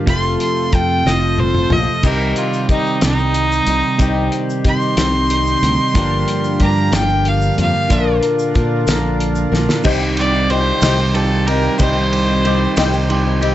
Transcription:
0.05 F1 F2 C3 F3 A3 C4 F4 A4 C5 C6, kick, closed hi-hat
0.40 C6, closed hi-hat
0.72 F2 F3 C4 F4 A4 G5, kick, closed hi-hat
1.05 F1 F3 C4 F4 A4 D#5, snare
1.38 C5, high tom
1.55 mid tom
1.70 A#1 C4 F4 A4 D#5, mid tom
2.03 C2 C3 D#3 G3 C4 D#4 G4 A#4 C5, kick, closed hi-hat, crash, shaker
2.36 F4, closed hi-hat, shaker
2.53 shaker
2.69 C3 G3 C4 D#4 G4, kick, closed hi-hat
2.86 shaker
3.01 C2 C3 G3 C4 D#4 G4, snare, closed hi-hat, shaker
3.18 shaker
3.34 closed hi-hat
3.52 shaker
3.67 C2 C4 D#4 G4, closed hi-hat
3.99 C2 C3 D#3 G3 C4 D#4 G4, kick, closed hi-hat, shaker
4.32 closed hi-hat, shaker
4.50 shaker
4.65 C3 G3 C4 D#4 G4 C6, kick, closed hi-hat
4.81 shaker
4.97 C2 C3 G3 C4 D#4 G4, snare, closed hi-hat, shaker
5.15 shaker
5.30 closed hi-hat
5.47 shaker
5.63 D2 C4 D#4 G4, closed hi-hat
5.95 G1 G2 D3 F3 A#3 D4 F4 G4 A#4, kick, closed hi-hat, shaker
6.28 closed hi-hat, shaker
6.44 shaker
6.60 G2 F3 A#3 D4 G4 A#5, kick, closed hi-hat
6.77 shaker
6.92 G1 G2 D3 F3 A#3 D4 G4, snare, closed hi-hat, shaker
6.96 G5
7.09 shaker
7.25 F5, closed hi-hat
7.42 shaker
7.57 F2 F3 A#3 D4 G4 F5, closed hi-hat
7.89 A#1 A#2 D3 F3 A#3 D4 F4 A#4, kick, closed hi-hat, shaker
8.23 closed hi-hat, shaker
8.39 shaker
8.54 A#2 F3 A#3 D4 A#4, kick, closed hi-hat, shaker
8.87 A#1 A#2 D3 F3 A#3 D4 A#4, snare, closed hi-hat, shaker
9.20 closed hi-hat
9.35 shaker
9.52 A#1 F3 A#3 D4 A#4, snare
9.69 snare
9.84 C2 C3 D#3 G3 C4 D#4 G4 C5 G5, kick, crash, shaker
10.00 C4 D#4 G4
10.17 G3 C4 G4 D5, ride
10.34 C4 D#4 G4
10.49 D#3 G3 C4 D#4 G4 C5, ride
10.81 C2 C3 G3 C4 D#4 G4, snare, ride, shaker
10.98 C4 D#4 G4, shaker
11.14 D#3 G3 C4 G4 A4, ride, shaker
11.30 C4 D#4 G4
11.47 G3 C4 D#4 G4 A#4, ride
11.78 C2 C3 D#3 G3 C4 D#4 G4 C5 D#5, kick, ride, shaker
11.96 C4 D#4 G4
12.12 G3 C4 G4, ride
12.28 C4 D#4 G4
12.44 D#3 G3 C4 D#4 G4, ride
12.76 C2 C3 G3 C4 D#4 G4, snare, ride, shaker
12.93 C4 D#4 G4, shaker
13.09 D#3 G3 C4 G4 C6, ride, shaker
13.25 C4 D#4 G4
13.41 G3 C4 D#4 G4, ride

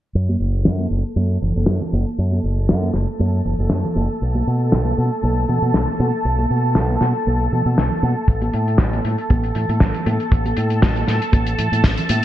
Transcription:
0.15 F#2 A4 A5
0.29 high conga
0.40 F#1
0.65 F#2, snare
0.79 high conga
0.91 F#1
1.16 F#2, high conga
1.42 F#1, low conga
1.56 F#1, high conga
1.66 F#2, snare
1.81 low conga
1.93 F#1, high conga
2.18 F#2
2.32 high conga
2.44 F#1
2.69 F#2, snare
2.82 high conga
2.94 F#1, snare
3.20 F#2, high conga
3.45 F#1, low conga
3.59 F#1, high conga
3.70 F#2, snare
3.84 low conga
3.96 F#1, high conga
4.22 B1
4.35 high conga
4.47 B2
4.72 B1, snare
4.85 high conga
4.98 B2
5.23 B1, high conga
5.49 B2, low conga
5.62 B2, high conga
5.74 B1, snare
5.88 low conga
5.99 B2, high conga
6.25 B1
6.39 high conga
6.50 B2
6.75 B1, snare
6.90 high conga
7.01 B2, snare
7.27 B1, high conga
7.52 B2, low conga
7.65 B2, high conga
7.78 B1, snare
7.92 low conga
8.03 B2, high conga
8.28 A1 A4 A5, kick, closed hi-hat
8.42 closed hi-hat, high conga
8.54 A2, closed hi-hat
8.68 closed hi-hat
8.78 A1, kick, snare, closed hi-hat
8.93 closed hi-hat, high conga
9.05 A2, closed hi-hat
9.18 closed hi-hat
9.30 A1, kick, closed hi-hat, high conga
9.43 closed hi-hat
9.55 A2, closed hi-hat, low conga
9.69 A2, closed hi-hat, high conga
9.80 A1, kick, snare, closed hi-hat
9.94 closed hi-hat, low conga
10.06 A2, closed hi-hat, high conga
10.20 closed hi-hat
10.32 A1, kick, closed hi-hat
10.45 closed hi-hat, high conga
10.57 A2, closed hi-hat
10.70 closed hi-hat
10.82 A1, kick, snare, closed hi-hat
10.96 closed hi-hat, high conga
11.08 A2, snare, closed hi-hat
11.22 closed hi-hat
11.32 A1, kick, closed hi-hat, high conga
11.47 closed hi-hat
11.58 A2, closed hi-hat, low conga
11.72 A2, closed hi-hat, high conga
11.84 A1, kick, snare, closed hi-hat
11.97 closed hi-hat, low conga
12.09 A2, closed hi-hat, high conga

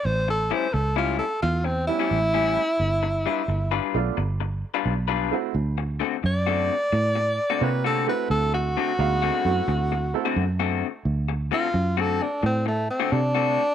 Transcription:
0.05 A1 C5
0.28 A4, muted clean electric guitar stroke
0.51 A2 G3 C#4 E4 C5
0.73 C#2 A4, muted clean electric guitar stroke
0.96 A2 G3 C#4 E4 F4
1.19 A4
1.42 E2 F4, muted clean electric guitar stroke
1.65 C4, muted clean electric guitar stroke
1.87 G3 B3 C#4 E4
1.99 A2 G3 C#4 E4
2.11 A1
2.34 A2 G3 C#4 E4
2.79 G1
3.03 muted clean electric guitar stroke
3.26 G3 D4 F4 B4
3.48 G1, muted clean electric guitar stroke
3.71 G3 D4 F4 B4
3.94 B1 A3 B3 D4 F4
4.17 G1, muted clean electric guitar stroke
4.40 muted clean electric guitar stroke
4.74 G3 D4 F4 B4
4.85 B1
5.08 G3 D4 F4 B4
5.31 A3 C4 E4 F#4
5.55 D2
5.78 muted clean electric guitar stroke
6.00 D3 A3 C4 F#4
6.23 F#2 D5, muted clean electric guitar stroke
6.47 D3 A3 C4 F#4
6.92 A2, muted clean electric guitar stroke
7.15 muted clean electric guitar stroke
7.50 D3 A3 C4 F#4
7.61 C3 A#3 F4 G4 B4 C#5
7.84 D3 A3 C4 F#4 A4
8.07 A3 C4 E4 F#4 B4
8.30 D2 A4
8.54 F#4, muted clean electric guitar stroke
8.77 D3 A3 C4 F#4
8.98 D2 G#3 B3 D#4 F5, muted clean electric guitar stroke
9.22 D3 A3 C4 F#4
9.45 F#2 A3 C4 E4 F#4
9.68 D2, muted clean electric guitar stroke
9.92 muted clean electric guitar stroke
10.14 A3 C4 E4 A4
10.25 D3 A3 C4 F#4
10.36 F#2
10.60 D3 A3 C4 F#4
11.05 D2
11.28 muted clean electric guitar stroke
11.51 D3 A3 C4 F4 F#4
11.73 F#2, muted clean electric guitar stroke
11.97 D3 A3 C4 F#4 A4
12.22 D4
12.43 A2 C4, muted clean electric guitar stroke
12.66 A3, muted clean electric guitar stroke
12.90 C4
13.00 D3 A3 C4 F#4
13.12 C3 D4
13.35 D3 A3 C4 F#4

